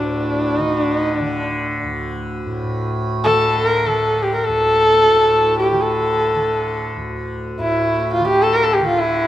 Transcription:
0, 0, Header, 1, 3, 480
1, 0, Start_track
1, 0, Tempo, 500000
1, 8901, End_track
2, 0, Start_track
2, 0, Title_t, "Sarangi"
2, 0, Program_c, 0, 110
2, 0, Note_on_c, 0, 62, 74
2, 571, Note_off_c, 0, 62, 0
2, 571, Note_on_c, 0, 63, 74
2, 743, Note_off_c, 0, 63, 0
2, 743, Note_on_c, 0, 62, 74
2, 935, Note_off_c, 0, 62, 0
2, 935, Note_on_c, 0, 63, 74
2, 1108, Note_off_c, 0, 63, 0
2, 1108, Note_on_c, 0, 62, 74
2, 1731, Note_off_c, 0, 62, 0
2, 3111, Note_on_c, 0, 69, 89
2, 3514, Note_on_c, 0, 70, 80
2, 3528, Note_off_c, 0, 69, 0
2, 3708, Note_on_c, 0, 69, 76
2, 3723, Note_off_c, 0, 70, 0
2, 4053, Note_on_c, 0, 67, 79
2, 4068, Note_off_c, 0, 69, 0
2, 4171, Note_off_c, 0, 67, 0
2, 4177, Note_on_c, 0, 70, 59
2, 4268, Note_on_c, 0, 69, 95
2, 4282, Note_off_c, 0, 70, 0
2, 5364, Note_off_c, 0, 69, 0
2, 5371, Note_on_c, 0, 67, 68
2, 5574, Note_on_c, 0, 69, 72
2, 5588, Note_off_c, 0, 67, 0
2, 6600, Note_off_c, 0, 69, 0
2, 7298, Note_on_c, 0, 64, 78
2, 7779, Note_off_c, 0, 64, 0
2, 7810, Note_on_c, 0, 65, 84
2, 7941, Note_off_c, 0, 65, 0
2, 7946, Note_on_c, 0, 67, 83
2, 8086, Note_on_c, 0, 69, 84
2, 8101, Note_off_c, 0, 67, 0
2, 8200, Note_on_c, 0, 70, 93
2, 8215, Note_off_c, 0, 69, 0
2, 8290, Note_on_c, 0, 69, 90
2, 8304, Note_off_c, 0, 70, 0
2, 8386, Note_on_c, 0, 67, 83
2, 8400, Note_off_c, 0, 69, 0
2, 8506, Note_off_c, 0, 67, 0
2, 8512, Note_on_c, 0, 65, 78
2, 8626, Note_on_c, 0, 64, 94
2, 8641, Note_off_c, 0, 65, 0
2, 8901, Note_off_c, 0, 64, 0
2, 8901, End_track
3, 0, Start_track
3, 0, Title_t, "Tanpura"
3, 0, Program_c, 1, 104
3, 0, Note_on_c, 1, 38, 57
3, 0, Note_on_c, 1, 45, 64
3, 0, Note_on_c, 1, 50, 57
3, 560, Note_off_c, 1, 50, 0
3, 560, Note_on_c, 1, 50, 58
3, 1151, Note_off_c, 1, 50, 0
3, 1151, Note_on_c, 1, 50, 62
3, 1759, Note_off_c, 1, 38, 0
3, 1762, Note_on_c, 1, 38, 60
3, 2361, Note_off_c, 1, 45, 0
3, 2365, Note_on_c, 1, 45, 58
3, 2532, Note_off_c, 1, 45, 0
3, 2532, Note_on_c, 1, 45, 52
3, 3127, Note_off_c, 1, 50, 0
3, 3127, Note_on_c, 1, 50, 52
3, 3706, Note_off_c, 1, 50, 0
3, 3706, Note_on_c, 1, 50, 51
3, 4297, Note_off_c, 1, 38, 0
3, 4301, Note_on_c, 1, 38, 54
3, 4913, Note_off_c, 1, 45, 0
3, 4913, Note_on_c, 1, 45, 55
3, 5489, Note_off_c, 1, 50, 0
3, 5489, Note_on_c, 1, 50, 51
3, 6096, Note_off_c, 1, 50, 0
3, 6096, Note_on_c, 1, 50, 59
3, 6683, Note_off_c, 1, 38, 0
3, 6687, Note_on_c, 1, 38, 56
3, 7277, Note_off_c, 1, 45, 0
3, 7281, Note_on_c, 1, 45, 60
3, 7866, Note_off_c, 1, 50, 0
3, 7866, Note_on_c, 1, 50, 57
3, 8457, Note_off_c, 1, 50, 0
3, 8457, Note_on_c, 1, 50, 58
3, 8901, Note_off_c, 1, 38, 0
3, 8901, Note_off_c, 1, 45, 0
3, 8901, Note_off_c, 1, 50, 0
3, 8901, End_track
0, 0, End_of_file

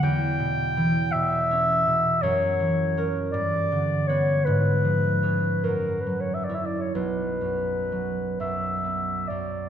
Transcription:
0, 0, Header, 1, 3, 480
1, 0, Start_track
1, 0, Key_signature, 2, "minor"
1, 0, Tempo, 732601
1, 16, Time_signature, 6, 3, 24, 8
1, 1936, Tempo, 756620
1, 3376, Tempo, 826446
1, 3856, Tempo, 879765
1, 4336, Tempo, 990099
1, 4816, Tempo, 921659
1, 5296, Tempo, 867052
1, 5765, End_track
2, 0, Start_track
2, 0, Title_t, "Clarinet"
2, 0, Program_c, 0, 71
2, 22, Note_on_c, 0, 79, 85
2, 733, Note_on_c, 0, 76, 87
2, 743, Note_off_c, 0, 79, 0
2, 1454, Note_on_c, 0, 73, 76
2, 1464, Note_off_c, 0, 76, 0
2, 2002, Note_off_c, 0, 73, 0
2, 2166, Note_on_c, 0, 74, 74
2, 2644, Note_on_c, 0, 73, 73
2, 2653, Note_off_c, 0, 74, 0
2, 2883, Note_on_c, 0, 71, 76
2, 2892, Note_off_c, 0, 73, 0
2, 3617, Note_on_c, 0, 70, 64
2, 3626, Note_off_c, 0, 71, 0
2, 3830, Note_on_c, 0, 71, 55
2, 3839, Note_off_c, 0, 70, 0
2, 3939, Note_on_c, 0, 73, 46
2, 3947, Note_off_c, 0, 71, 0
2, 4013, Note_on_c, 0, 76, 47
2, 4021, Note_off_c, 0, 73, 0
2, 4070, Note_on_c, 0, 74, 45
2, 4078, Note_off_c, 0, 76, 0
2, 4127, Note_on_c, 0, 76, 44
2, 4135, Note_off_c, 0, 74, 0
2, 4186, Note_on_c, 0, 74, 44
2, 4194, Note_off_c, 0, 76, 0
2, 4269, Note_on_c, 0, 73, 41
2, 4277, Note_off_c, 0, 74, 0
2, 4343, Note_off_c, 0, 73, 0
2, 4346, Note_on_c, 0, 71, 53
2, 5055, Note_off_c, 0, 71, 0
2, 5068, Note_on_c, 0, 76, 58
2, 5538, Note_on_c, 0, 74, 49
2, 5546, Note_off_c, 0, 76, 0
2, 5765, Note_off_c, 0, 74, 0
2, 5765, End_track
3, 0, Start_track
3, 0, Title_t, "Harp"
3, 0, Program_c, 1, 46
3, 0, Note_on_c, 1, 59, 46
3, 18, Note_on_c, 1, 40, 63
3, 258, Note_on_c, 1, 47, 46
3, 504, Note_on_c, 1, 52, 54
3, 741, Note_off_c, 1, 47, 0
3, 749, Note_on_c, 1, 47, 42
3, 989, Note_on_c, 1, 61, 45
3, 1218, Note_off_c, 1, 47, 0
3, 1225, Note_on_c, 1, 47, 45
3, 1462, Note_on_c, 1, 42, 61
3, 1468, Note_off_c, 1, 59, 0
3, 1472, Note_off_c, 1, 40, 0
3, 1473, Note_off_c, 1, 52, 0
3, 1477, Note_off_c, 1, 47, 0
3, 1701, Note_on_c, 1, 52, 43
3, 1940, Note_off_c, 1, 61, 0
3, 1948, Note_on_c, 1, 61, 43
3, 1952, Note_on_c, 1, 70, 48
3, 2179, Note_on_c, 1, 43, 57
3, 2197, Note_off_c, 1, 52, 0
3, 2198, Note_off_c, 1, 42, 0
3, 2199, Note_off_c, 1, 61, 0
3, 2201, Note_off_c, 1, 70, 0
3, 2421, Note_on_c, 1, 50, 39
3, 2657, Note_on_c, 1, 59, 41
3, 2661, Note_on_c, 1, 71, 46
3, 2896, Note_on_c, 1, 44, 60
3, 2906, Note_off_c, 1, 43, 0
3, 2908, Note_off_c, 1, 50, 0
3, 3134, Note_on_c, 1, 53, 35
3, 3378, Note_on_c, 1, 61, 40
3, 3384, Note_on_c, 1, 68, 42
3, 3616, Note_on_c, 1, 42, 42
3, 3634, Note_off_c, 1, 68, 0
3, 3635, Note_off_c, 1, 53, 0
3, 3635, Note_off_c, 1, 59, 0
3, 3636, Note_off_c, 1, 44, 0
3, 3637, Note_off_c, 1, 71, 0
3, 3864, Note_on_c, 1, 54, 35
3, 4092, Note_off_c, 1, 61, 0
3, 4097, Note_on_c, 1, 61, 34
3, 4098, Note_on_c, 1, 64, 36
3, 4344, Note_on_c, 1, 35, 44
3, 4356, Note_off_c, 1, 42, 0
3, 4357, Note_off_c, 1, 64, 0
3, 4358, Note_off_c, 1, 61, 0
3, 4569, Note_on_c, 1, 42, 30
3, 4810, Note_off_c, 1, 54, 0
3, 4816, Note_on_c, 1, 54, 34
3, 5058, Note_off_c, 1, 42, 0
3, 5064, Note_on_c, 1, 42, 31
3, 5296, Note_on_c, 1, 59, 31
3, 5543, Note_off_c, 1, 42, 0
3, 5550, Note_on_c, 1, 42, 29
3, 5765, Note_off_c, 1, 35, 0
3, 5765, Note_off_c, 1, 42, 0
3, 5765, Note_off_c, 1, 54, 0
3, 5765, Note_off_c, 1, 59, 0
3, 5765, End_track
0, 0, End_of_file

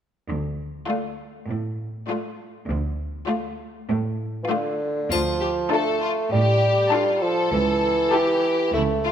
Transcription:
0, 0, Header, 1, 7, 480
1, 0, Start_track
1, 0, Key_signature, -1, "minor"
1, 0, Tempo, 604839
1, 218, Time_signature, 4, 2, 24, 8
1, 7236, End_track
2, 0, Start_track
2, 0, Title_t, "Violin section"
2, 0, Program_c, 0, 48
2, 702, Note_on_c, 0, 65, 35
2, 1057, Note_off_c, 0, 65, 0
2, 1656, Note_on_c, 0, 65, 37
2, 2008, Note_off_c, 0, 65, 0
2, 2606, Note_on_c, 0, 65, 42
2, 2961, Note_off_c, 0, 65, 0
2, 3569, Note_on_c, 0, 65, 44
2, 3929, Note_off_c, 0, 65, 0
2, 4538, Note_on_c, 0, 69, 38
2, 4538, Note_on_c, 0, 81, 41
2, 4891, Note_off_c, 0, 69, 0
2, 4891, Note_off_c, 0, 81, 0
2, 5488, Note_on_c, 0, 81, 39
2, 5492, Note_on_c, 0, 69, 39
2, 5845, Note_off_c, 0, 81, 0
2, 5847, Note_off_c, 0, 69, 0
2, 6437, Note_on_c, 0, 81, 40
2, 6438, Note_on_c, 0, 69, 41
2, 6805, Note_off_c, 0, 69, 0
2, 6805, Note_off_c, 0, 81, 0
2, 7236, End_track
3, 0, Start_track
3, 0, Title_t, "Violin section"
3, 0, Program_c, 1, 48
3, 695, Note_on_c, 1, 74, 37
3, 1053, Note_off_c, 1, 74, 0
3, 1654, Note_on_c, 1, 74, 36
3, 2007, Note_off_c, 1, 74, 0
3, 2605, Note_on_c, 1, 74, 42
3, 2960, Note_off_c, 1, 74, 0
3, 3563, Note_on_c, 1, 74, 45
3, 3926, Note_off_c, 1, 74, 0
3, 4049, Note_on_c, 1, 65, 43
3, 4113, Note_off_c, 1, 65, 0
3, 4288, Note_on_c, 1, 67, 38
3, 4352, Note_off_c, 1, 67, 0
3, 4530, Note_on_c, 1, 69, 39
3, 4765, Note_off_c, 1, 69, 0
3, 4769, Note_on_c, 1, 65, 38
3, 4833, Note_off_c, 1, 65, 0
3, 5015, Note_on_c, 1, 67, 44
3, 5483, Note_off_c, 1, 67, 0
3, 5491, Note_on_c, 1, 65, 38
3, 5725, Note_on_c, 1, 69, 41
3, 5730, Note_off_c, 1, 65, 0
3, 6432, Note_off_c, 1, 69, 0
3, 6442, Note_on_c, 1, 67, 41
3, 6927, Note_on_c, 1, 64, 42
3, 6932, Note_off_c, 1, 67, 0
3, 6990, Note_off_c, 1, 64, 0
3, 7178, Note_on_c, 1, 65, 40
3, 7236, Note_off_c, 1, 65, 0
3, 7236, End_track
4, 0, Start_track
4, 0, Title_t, "Viola section"
4, 0, Program_c, 2, 48
4, 699, Note_on_c, 2, 57, 36
4, 1055, Note_off_c, 2, 57, 0
4, 1651, Note_on_c, 2, 57, 39
4, 2005, Note_off_c, 2, 57, 0
4, 2605, Note_on_c, 2, 57, 43
4, 2960, Note_off_c, 2, 57, 0
4, 3569, Note_on_c, 2, 57, 47
4, 3930, Note_off_c, 2, 57, 0
4, 4526, Note_on_c, 2, 62, 40
4, 4527, Note_on_c, 2, 65, 37
4, 4885, Note_off_c, 2, 62, 0
4, 4885, Note_off_c, 2, 65, 0
4, 5486, Note_on_c, 2, 65, 40
4, 5487, Note_on_c, 2, 62, 38
4, 5844, Note_off_c, 2, 65, 0
4, 5845, Note_off_c, 2, 62, 0
4, 6438, Note_on_c, 2, 64, 38
4, 6440, Note_on_c, 2, 67, 38
4, 6805, Note_off_c, 2, 64, 0
4, 6806, Note_off_c, 2, 67, 0
4, 7236, End_track
5, 0, Start_track
5, 0, Title_t, "Bassoon"
5, 0, Program_c, 3, 70
5, 3514, Note_on_c, 3, 52, 43
5, 3575, Note_on_c, 3, 50, 60
5, 3587, Note_off_c, 3, 52, 0
5, 4056, Note_off_c, 3, 50, 0
5, 4063, Note_on_c, 3, 53, 49
5, 4527, Note_off_c, 3, 53, 0
5, 4536, Note_on_c, 3, 57, 51
5, 5004, Note_off_c, 3, 57, 0
5, 5017, Note_on_c, 3, 55, 52
5, 5729, Note_on_c, 3, 53, 53
5, 5741, Note_off_c, 3, 55, 0
5, 5963, Note_off_c, 3, 53, 0
5, 5968, Note_on_c, 3, 52, 61
5, 6916, Note_off_c, 3, 52, 0
5, 6932, Note_on_c, 3, 57, 54
5, 7236, Note_off_c, 3, 57, 0
5, 7236, End_track
6, 0, Start_track
6, 0, Title_t, "Cello section"
6, 0, Program_c, 4, 48
6, 220, Note_on_c, 4, 38, 43
6, 600, Note_off_c, 4, 38, 0
6, 1174, Note_on_c, 4, 45, 42
6, 1552, Note_off_c, 4, 45, 0
6, 2128, Note_on_c, 4, 38, 45
6, 2504, Note_off_c, 4, 38, 0
6, 3089, Note_on_c, 4, 45, 57
6, 3467, Note_off_c, 4, 45, 0
6, 4055, Note_on_c, 4, 38, 43
6, 4432, Note_off_c, 4, 38, 0
6, 5011, Note_on_c, 4, 45, 42
6, 5390, Note_off_c, 4, 45, 0
6, 5972, Note_on_c, 4, 37, 48
6, 6350, Note_off_c, 4, 37, 0
6, 6931, Note_on_c, 4, 37, 51
6, 7236, Note_off_c, 4, 37, 0
6, 7236, End_track
7, 0, Start_track
7, 0, Title_t, "Drums"
7, 4061, Note_on_c, 9, 81, 27
7, 4140, Note_off_c, 9, 81, 0
7, 7236, End_track
0, 0, End_of_file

